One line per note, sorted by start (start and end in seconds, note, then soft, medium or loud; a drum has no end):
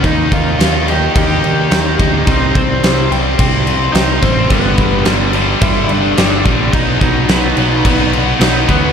0.03 0.28 D#2 loud
0.03 0.58 D#3 loud
0.03 0.58 A#3 loud
0.03 0.30 D#4 medium
0.03 0.60 D#4 loud
0.03 0.34 D#5 loud
0.03 kick medium
0.03 crash medium
0.32 0.56 D#2 loud
0.32 0.84 F4 medium
0.32 0.90 F5 medium
0.32 kick medium
0.32 crash medium
0.59 1.07 D#2 medium
0.59 0.87 D#3 medium
0.59 0.87 A#3 medium
0.59 0.88 D#4 loud
0.59 snare loud
0.59 crash medium
0.88 1.14 D#3 loud
0.88 1.14 A#3 medium
0.88 1.15 D#4 loud
0.88 1.14 G4 medium
0.88 1.16 G5 loud
0.88 crash medium
1.15 1.40 D#2 loud
1.15 1.70 D#3 medium
1.15 1.70 A#3 loud
1.15 1.71 D#4 loud
1.15 2.23 G4 medium
1.15 2.32 G5 loud
1.15 kick loud
1.15 crash medium
1.43 1.67 D#2 medium
1.43 crash medium
1.71 1.95 D#2 medium
1.71 1.98 D#3 medium
1.71 1.98 A#3 medium
1.71 1.99 D#4 medium
1.71 snare loud
1.71 crash medium
1.99 2.23 D2 medium
1.99 2.26 D#3 medium
1.99 2.26 A#3 loud
1.99 2.26 D#4 loud
1.99 kick medium
1.99 crash medium
2.26 2.51 C2 loud
2.26 2.82 C3 loud
2.26 2.83 G3 loud
2.26 2.83 C4 loud
2.26 2.53 D#4 medium
2.26 2.56 D#5 loud
2.26 kick loud
2.26 crash medium
2.53 2.79 C2 loud
2.53 3.06 C4 medium
2.53 3.07 C5 medium
2.53 kick medium
2.53 crash medium
2.83 3.07 C2 medium
2.83 3.10 C3 medium
2.83 3.12 G3 medium
2.83 3.11 C4 loud
2.83 snare loud
2.83 crash medium
3.11 3.35 C2 medium
3.11 3.38 C3 medium
3.11 3.38 G3 medium
3.11 3.39 C4 loud
3.11 crash medium
3.39 3.87 C2 loud
3.39 3.92 C3 medium
3.39 3.93 G3 medium
3.39 3.94 C4 loud
3.39 kick loud
3.39 crash medium
3.67 crash medium
3.93 4.18 C2 medium
3.93 4.21 C3 medium
3.93 4.21 G3 medium
3.93 4.22 C4 medium
3.93 4.20 D#4 medium
3.93 4.23 D#5 medium
3.93 snare loud
3.93 crash medium
4.21 4.47 A1 medium
4.21 4.49 C3 medium
4.21 4.49 G3 medium
4.21 4.48 C4 medium
4.21 4.49 C4 medium
4.21 4.51 C5 medium
4.21 kick medium
4.21 crash medium
4.50 4.74 G1 loud
4.50 5.05 G2 loud
4.50 5.05 D3 loud
4.50 5.06 G3 loud
4.50 5.31 B3 medium
4.50 5.09 B4 medium
4.50 kick loud
4.50 crash medium
4.78 5.02 G1 medium
4.78 kick medium
4.78 crash medium
5.05 5.54 G1 medium
5.05 5.33 G2 medium
5.05 5.34 D3 medium
5.05 5.34 G3 medium
5.05 5.31 A4 medium
5.05 snare loud
5.05 crash medium
5.33 5.61 G2 medium
5.33 5.61 D3 medium
5.33 5.61 G3 loud
5.33 crash medium
5.61 5.86 G1 loud
5.61 6.16 G2 medium
5.61 6.17 D3 medium
5.61 6.18 G3 loud
5.61 5.88 E4 medium
5.61 5.91 E5 loud
5.61 kick loud
5.61 crash medium
5.89 6.13 G1 medium
5.89 6.43 D4 medium
5.89 6.43 D5 medium
5.89 crash medium
6.17 6.42 G1 medium
6.17 6.44 G2 medium
6.17 6.45 D3 medium
6.17 6.45 G3 loud
6.17 snare loud
6.17 crash medium
6.45 6.70 A#1 medium
6.45 6.72 G2 medium
6.45 6.72 D3 loud
6.45 6.72 G3 medium
6.45 kick medium
6.45 crash medium
6.73 6.97 B1 loud
6.73 7.28 B2 loud
6.73 7.29 F#3 loud
6.73 7.29 B3 loud
6.73 6.99 D#4 medium
6.73 6.98 D#5 medium
6.73 kick loud
6.73 crash medium
7.00 7.25 B1 medium
7.00 8.09 D#4 medium
7.00 8.08 D#5 medium
7.00 kick medium
7.00 crash medium
7.28 7.53 B1 loud
7.28 7.56 B2 loud
7.28 7.57 F#3 loud
7.28 7.58 B3 loud
7.28 snare loud
7.28 crash medium
7.57 7.81 B1 medium
7.57 7.83 B2 medium
7.57 7.84 F#3 medium
7.57 7.84 B3 loud
7.57 crash medium
7.85 8.33 B1 loud
7.85 8.40 B2 loud
7.85 8.40 F#3 medium
7.85 8.41 B3 loud
7.85 kick loud
7.85 crash loud
8.13 crash medium
8.40 8.64 B1 medium
8.40 8.67 B2 medium
8.40 8.67 F#3 loud
8.40 8.68 B3 loud
8.40 8.67 D#4 medium
8.40 8.70 D#5 loud
8.40 snare loud
8.40 crash medium
8.68 8.93 D2 medium
8.68 8.93 B2 medium
8.68 8.93 F#3 medium
8.68 8.93 B3 medium
8.68 8.93 B4 loud
8.68 kick medium
8.68 crash medium